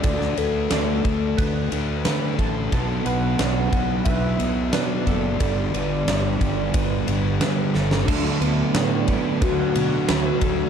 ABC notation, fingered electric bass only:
X:1
M:4/4
L:1/8
Q:1/4=90
K:D
V:1 name="Fingered electric bass" clef=bass
D,, D,, D,, D,, D,, D,, D, A,,, | B,,, B,,, B,,, B,,, B,,, B,,, B,, F,,, | G,,, G,,, G,,, G,,, G,,, G,,, G,, G,,, | D,, D,, A,,2 D,, B,, D,, D,, |]